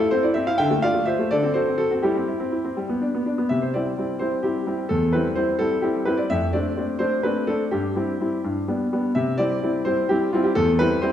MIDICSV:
0, 0, Header, 1, 2, 480
1, 0, Start_track
1, 0, Key_signature, 0, "major"
1, 0, Tempo, 483481
1, 589, Time_signature, 6, 3, 24, 8
1, 3480, Tempo, 465116
1, 6840, Tempo, 479233
1, 9240, Tempo, 468019
1, 11257, End_track
2, 0, Start_track
2, 0, Title_t, "Grand piano"
2, 0, Program_c, 0, 0
2, 0, Note_on_c, 0, 64, 63
2, 0, Note_on_c, 0, 69, 97
2, 109, Note_on_c, 0, 72, 89
2, 112, Note_off_c, 0, 69, 0
2, 121, Note_on_c, 0, 60, 59
2, 122, Note_off_c, 0, 64, 0
2, 229, Note_on_c, 0, 74, 75
2, 231, Note_off_c, 0, 72, 0
2, 242, Note_off_c, 0, 60, 0
2, 243, Note_on_c, 0, 64, 56
2, 337, Note_on_c, 0, 76, 92
2, 348, Note_on_c, 0, 60, 63
2, 349, Note_off_c, 0, 74, 0
2, 363, Note_off_c, 0, 64, 0
2, 463, Note_off_c, 0, 76, 0
2, 467, Note_on_c, 0, 77, 86
2, 469, Note_on_c, 0, 64, 61
2, 474, Note_off_c, 0, 60, 0
2, 575, Note_on_c, 0, 79, 102
2, 587, Note_off_c, 0, 77, 0
2, 588, Note_off_c, 0, 64, 0
2, 590, Note_on_c, 0, 50, 79
2, 590, Note_on_c, 0, 76, 78
2, 701, Note_on_c, 0, 57, 57
2, 704, Note_off_c, 0, 50, 0
2, 721, Note_off_c, 0, 79, 0
2, 810, Note_off_c, 0, 76, 0
2, 818, Note_on_c, 0, 77, 93
2, 826, Note_on_c, 0, 74, 73
2, 829, Note_off_c, 0, 57, 0
2, 829, Note_on_c, 0, 65, 61
2, 937, Note_on_c, 0, 57, 49
2, 952, Note_off_c, 0, 65, 0
2, 1035, Note_off_c, 0, 77, 0
2, 1046, Note_off_c, 0, 74, 0
2, 1048, Note_on_c, 0, 76, 85
2, 1058, Note_on_c, 0, 65, 55
2, 1062, Note_on_c, 0, 72, 66
2, 1065, Note_off_c, 0, 57, 0
2, 1181, Note_on_c, 0, 57, 51
2, 1185, Note_off_c, 0, 65, 0
2, 1268, Note_off_c, 0, 76, 0
2, 1283, Note_off_c, 0, 72, 0
2, 1297, Note_on_c, 0, 74, 90
2, 1300, Note_off_c, 0, 57, 0
2, 1311, Note_on_c, 0, 69, 72
2, 1312, Note_on_c, 0, 50, 66
2, 1419, Note_on_c, 0, 60, 55
2, 1422, Note_off_c, 0, 50, 0
2, 1524, Note_off_c, 0, 69, 0
2, 1527, Note_on_c, 0, 72, 77
2, 1538, Note_off_c, 0, 74, 0
2, 1538, Note_on_c, 0, 66, 58
2, 1539, Note_on_c, 0, 69, 65
2, 1545, Note_off_c, 0, 60, 0
2, 1659, Note_on_c, 0, 60, 50
2, 1665, Note_off_c, 0, 66, 0
2, 1750, Note_off_c, 0, 69, 0
2, 1765, Note_on_c, 0, 69, 82
2, 1775, Note_off_c, 0, 72, 0
2, 1776, Note_on_c, 0, 66, 53
2, 1787, Note_off_c, 0, 60, 0
2, 1875, Note_off_c, 0, 66, 0
2, 1890, Note_on_c, 0, 66, 54
2, 1895, Note_off_c, 0, 69, 0
2, 1901, Note_on_c, 0, 60, 55
2, 2010, Note_on_c, 0, 67, 71
2, 2018, Note_off_c, 0, 66, 0
2, 2019, Note_on_c, 0, 55, 66
2, 2023, Note_on_c, 0, 64, 56
2, 2024, Note_off_c, 0, 60, 0
2, 2140, Note_off_c, 0, 55, 0
2, 2143, Note_on_c, 0, 60, 51
2, 2252, Note_off_c, 0, 64, 0
2, 2267, Note_on_c, 0, 64, 51
2, 2273, Note_off_c, 0, 60, 0
2, 2380, Note_on_c, 0, 60, 53
2, 2396, Note_off_c, 0, 64, 0
2, 2504, Note_on_c, 0, 64, 46
2, 2514, Note_off_c, 0, 60, 0
2, 2626, Note_on_c, 0, 60, 48
2, 2636, Note_off_c, 0, 64, 0
2, 2748, Note_on_c, 0, 55, 57
2, 2752, Note_off_c, 0, 60, 0
2, 2870, Note_off_c, 0, 55, 0
2, 2873, Note_on_c, 0, 59, 53
2, 2993, Note_on_c, 0, 62, 50
2, 3003, Note_off_c, 0, 59, 0
2, 3122, Note_on_c, 0, 59, 50
2, 3124, Note_off_c, 0, 62, 0
2, 3235, Note_off_c, 0, 67, 0
2, 3238, Note_on_c, 0, 62, 51
2, 3249, Note_off_c, 0, 59, 0
2, 3357, Note_on_c, 0, 59, 52
2, 3366, Note_off_c, 0, 62, 0
2, 3467, Note_on_c, 0, 76, 83
2, 3478, Note_off_c, 0, 59, 0
2, 3480, Note_on_c, 0, 48, 46
2, 3595, Note_off_c, 0, 76, 0
2, 3596, Note_on_c, 0, 72, 51
2, 3715, Note_off_c, 0, 48, 0
2, 3720, Note_off_c, 0, 72, 0
2, 3720, Note_on_c, 0, 74, 64
2, 3734, Note_on_c, 0, 55, 39
2, 3735, Note_on_c, 0, 60, 40
2, 3738, Note_on_c, 0, 64, 44
2, 3904, Note_off_c, 0, 55, 0
2, 3905, Note_off_c, 0, 60, 0
2, 3906, Note_off_c, 0, 64, 0
2, 3974, Note_on_c, 0, 55, 37
2, 3976, Note_on_c, 0, 60, 36
2, 3979, Note_on_c, 0, 64, 41
2, 4144, Note_off_c, 0, 55, 0
2, 4145, Note_off_c, 0, 60, 0
2, 4147, Note_off_c, 0, 64, 0
2, 4162, Note_off_c, 0, 74, 0
2, 4190, Note_on_c, 0, 72, 69
2, 4205, Note_on_c, 0, 55, 39
2, 4206, Note_on_c, 0, 60, 43
2, 4213, Note_on_c, 0, 64, 45
2, 4339, Note_off_c, 0, 72, 0
2, 4378, Note_off_c, 0, 55, 0
2, 4379, Note_off_c, 0, 60, 0
2, 4383, Note_off_c, 0, 64, 0
2, 4432, Note_on_c, 0, 67, 60
2, 4442, Note_on_c, 0, 55, 36
2, 4444, Note_on_c, 0, 60, 39
2, 4449, Note_on_c, 0, 64, 44
2, 4616, Note_off_c, 0, 55, 0
2, 4617, Note_off_c, 0, 60, 0
2, 4621, Note_off_c, 0, 64, 0
2, 4677, Note_on_c, 0, 55, 44
2, 4684, Note_on_c, 0, 60, 44
2, 4686, Note_on_c, 0, 64, 45
2, 4853, Note_off_c, 0, 55, 0
2, 4857, Note_off_c, 0, 60, 0
2, 4859, Note_off_c, 0, 64, 0
2, 4878, Note_off_c, 0, 67, 0
2, 4909, Note_on_c, 0, 69, 76
2, 4924, Note_on_c, 0, 40, 62
2, 5152, Note_on_c, 0, 71, 75
2, 5155, Note_off_c, 0, 69, 0
2, 5156, Note_off_c, 0, 40, 0
2, 5164, Note_on_c, 0, 55, 47
2, 5168, Note_on_c, 0, 60, 50
2, 5174, Note_on_c, 0, 64, 46
2, 5298, Note_off_c, 0, 71, 0
2, 5335, Note_off_c, 0, 55, 0
2, 5337, Note_off_c, 0, 60, 0
2, 5341, Note_off_c, 0, 64, 0
2, 5389, Note_on_c, 0, 72, 76
2, 5403, Note_on_c, 0, 55, 47
2, 5405, Note_on_c, 0, 60, 45
2, 5410, Note_on_c, 0, 64, 47
2, 5574, Note_off_c, 0, 55, 0
2, 5575, Note_off_c, 0, 60, 0
2, 5578, Note_off_c, 0, 64, 0
2, 5629, Note_on_c, 0, 69, 82
2, 5633, Note_off_c, 0, 72, 0
2, 5638, Note_on_c, 0, 55, 50
2, 5643, Note_on_c, 0, 60, 49
2, 5650, Note_on_c, 0, 64, 48
2, 5811, Note_off_c, 0, 55, 0
2, 5813, Note_off_c, 0, 60, 0
2, 5818, Note_off_c, 0, 64, 0
2, 5867, Note_on_c, 0, 67, 64
2, 5873, Note_off_c, 0, 69, 0
2, 5875, Note_on_c, 0, 55, 51
2, 5880, Note_on_c, 0, 60, 47
2, 5883, Note_on_c, 0, 64, 52
2, 6050, Note_off_c, 0, 55, 0
2, 6053, Note_off_c, 0, 60, 0
2, 6055, Note_off_c, 0, 64, 0
2, 6111, Note_on_c, 0, 71, 69
2, 6113, Note_off_c, 0, 67, 0
2, 6122, Note_on_c, 0, 55, 52
2, 6127, Note_on_c, 0, 60, 50
2, 6132, Note_on_c, 0, 64, 57
2, 6235, Note_on_c, 0, 74, 72
2, 6236, Note_off_c, 0, 71, 0
2, 6294, Note_off_c, 0, 55, 0
2, 6298, Note_off_c, 0, 60, 0
2, 6301, Note_off_c, 0, 64, 0
2, 6358, Note_off_c, 0, 74, 0
2, 6362, Note_on_c, 0, 76, 102
2, 6371, Note_on_c, 0, 41, 68
2, 6506, Note_off_c, 0, 76, 0
2, 6599, Note_off_c, 0, 41, 0
2, 6601, Note_on_c, 0, 74, 77
2, 6612, Note_on_c, 0, 57, 48
2, 6616, Note_on_c, 0, 60, 51
2, 6620, Note_on_c, 0, 62, 60
2, 6781, Note_off_c, 0, 57, 0
2, 6784, Note_off_c, 0, 60, 0
2, 6787, Note_off_c, 0, 62, 0
2, 6852, Note_on_c, 0, 57, 43
2, 6854, Note_on_c, 0, 60, 41
2, 6862, Note_on_c, 0, 62, 52
2, 7019, Note_off_c, 0, 57, 0
2, 7021, Note_off_c, 0, 60, 0
2, 7026, Note_off_c, 0, 62, 0
2, 7068, Note_on_c, 0, 72, 78
2, 7079, Note_on_c, 0, 57, 48
2, 7080, Note_off_c, 0, 74, 0
2, 7083, Note_on_c, 0, 60, 51
2, 7085, Note_on_c, 0, 62, 53
2, 7252, Note_off_c, 0, 57, 0
2, 7255, Note_off_c, 0, 60, 0
2, 7256, Note_off_c, 0, 62, 0
2, 7289, Note_off_c, 0, 72, 0
2, 7314, Note_on_c, 0, 71, 77
2, 7321, Note_on_c, 0, 57, 47
2, 7329, Note_on_c, 0, 60, 46
2, 7329, Note_on_c, 0, 62, 51
2, 7494, Note_off_c, 0, 57, 0
2, 7499, Note_off_c, 0, 60, 0
2, 7499, Note_off_c, 0, 62, 0
2, 7552, Note_on_c, 0, 69, 77
2, 7557, Note_off_c, 0, 71, 0
2, 7562, Note_on_c, 0, 57, 46
2, 7566, Note_on_c, 0, 60, 47
2, 7569, Note_on_c, 0, 62, 51
2, 7699, Note_off_c, 0, 69, 0
2, 7734, Note_off_c, 0, 57, 0
2, 7737, Note_off_c, 0, 60, 0
2, 7739, Note_off_c, 0, 62, 0
2, 7793, Note_on_c, 0, 67, 67
2, 7804, Note_on_c, 0, 43, 61
2, 8037, Note_off_c, 0, 43, 0
2, 8039, Note_on_c, 0, 55, 46
2, 8044, Note_on_c, 0, 64, 46
2, 8046, Note_on_c, 0, 60, 46
2, 8215, Note_off_c, 0, 55, 0
2, 8217, Note_off_c, 0, 64, 0
2, 8219, Note_off_c, 0, 60, 0
2, 8287, Note_on_c, 0, 55, 39
2, 8289, Note_on_c, 0, 60, 38
2, 8294, Note_on_c, 0, 64, 47
2, 8460, Note_off_c, 0, 55, 0
2, 8461, Note_off_c, 0, 60, 0
2, 8464, Note_off_c, 0, 64, 0
2, 8522, Note_off_c, 0, 67, 0
2, 8523, Note_on_c, 0, 43, 55
2, 8757, Note_off_c, 0, 43, 0
2, 8763, Note_on_c, 0, 55, 44
2, 8763, Note_on_c, 0, 59, 43
2, 8769, Note_on_c, 0, 62, 42
2, 8936, Note_off_c, 0, 55, 0
2, 8936, Note_off_c, 0, 59, 0
2, 8940, Note_off_c, 0, 62, 0
2, 9007, Note_on_c, 0, 55, 43
2, 9010, Note_on_c, 0, 62, 45
2, 9012, Note_on_c, 0, 59, 46
2, 9178, Note_off_c, 0, 55, 0
2, 9179, Note_off_c, 0, 62, 0
2, 9181, Note_off_c, 0, 59, 0
2, 9231, Note_on_c, 0, 76, 88
2, 9239, Note_on_c, 0, 48, 62
2, 9465, Note_on_c, 0, 74, 92
2, 9476, Note_off_c, 0, 48, 0
2, 9477, Note_on_c, 0, 55, 50
2, 9479, Note_off_c, 0, 76, 0
2, 9482, Note_on_c, 0, 60, 52
2, 9486, Note_on_c, 0, 64, 54
2, 9654, Note_off_c, 0, 55, 0
2, 9657, Note_off_c, 0, 60, 0
2, 9659, Note_off_c, 0, 64, 0
2, 9722, Note_on_c, 0, 55, 44
2, 9731, Note_on_c, 0, 60, 46
2, 9736, Note_on_c, 0, 64, 48
2, 9897, Note_off_c, 0, 55, 0
2, 9903, Note_off_c, 0, 60, 0
2, 9906, Note_off_c, 0, 64, 0
2, 9916, Note_off_c, 0, 74, 0
2, 9949, Note_on_c, 0, 72, 83
2, 9959, Note_on_c, 0, 55, 48
2, 9961, Note_on_c, 0, 60, 51
2, 9970, Note_on_c, 0, 64, 52
2, 10135, Note_off_c, 0, 55, 0
2, 10136, Note_off_c, 0, 60, 0
2, 10141, Note_off_c, 0, 64, 0
2, 10173, Note_off_c, 0, 72, 0
2, 10196, Note_on_c, 0, 67, 81
2, 10208, Note_on_c, 0, 55, 55
2, 10212, Note_on_c, 0, 60, 55
2, 10217, Note_on_c, 0, 64, 53
2, 10380, Note_off_c, 0, 55, 0
2, 10382, Note_off_c, 0, 60, 0
2, 10386, Note_off_c, 0, 64, 0
2, 10441, Note_off_c, 0, 67, 0
2, 10441, Note_on_c, 0, 65, 65
2, 10450, Note_on_c, 0, 55, 56
2, 10457, Note_on_c, 0, 60, 59
2, 10461, Note_on_c, 0, 64, 63
2, 10552, Note_on_c, 0, 67, 69
2, 10563, Note_off_c, 0, 65, 0
2, 10621, Note_off_c, 0, 55, 0
2, 10625, Note_off_c, 0, 60, 0
2, 10628, Note_off_c, 0, 64, 0
2, 10672, Note_on_c, 0, 69, 101
2, 10678, Note_off_c, 0, 67, 0
2, 10682, Note_on_c, 0, 40, 76
2, 10819, Note_off_c, 0, 69, 0
2, 10913, Note_on_c, 0, 71, 100
2, 10915, Note_off_c, 0, 40, 0
2, 10923, Note_on_c, 0, 55, 59
2, 10929, Note_on_c, 0, 60, 56
2, 10933, Note_on_c, 0, 64, 61
2, 11096, Note_off_c, 0, 55, 0
2, 11100, Note_off_c, 0, 60, 0
2, 11102, Note_off_c, 0, 64, 0
2, 11148, Note_on_c, 0, 72, 84
2, 11157, Note_on_c, 0, 55, 60
2, 11158, Note_off_c, 0, 71, 0
2, 11163, Note_on_c, 0, 64, 61
2, 11164, Note_on_c, 0, 60, 58
2, 11257, Note_off_c, 0, 55, 0
2, 11257, Note_off_c, 0, 60, 0
2, 11257, Note_off_c, 0, 64, 0
2, 11257, Note_off_c, 0, 72, 0
2, 11257, End_track
0, 0, End_of_file